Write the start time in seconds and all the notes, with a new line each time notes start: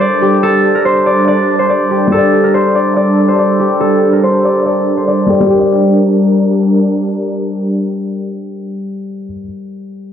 Already playing: G3 D4 G4 A4 A#4 C5 D5
0.01 D5
0.22 G4
0.43 A4
0.75 A#4
0.85 C5
1.06 D5
1.28 D5
1.59 C5
1.70 D5
1.91 G4
2.07 G3 G4
2.12 G3 A4
2.17 D5
2.44 A#4
2.54 C5
2.75 D5
2.97 D5
3.28 C5
3.39 D5
3.60 G4
3.80 A4
4.13 A#4
4.23 C5
4.44 D5
4.65 D5
4.97 C5
5.08 D5
5.26 G3 G4 A4
5.31 D5
5.40 G3
5.47 G3 D4 G4 A#4
5.53 A#4
5.60 D5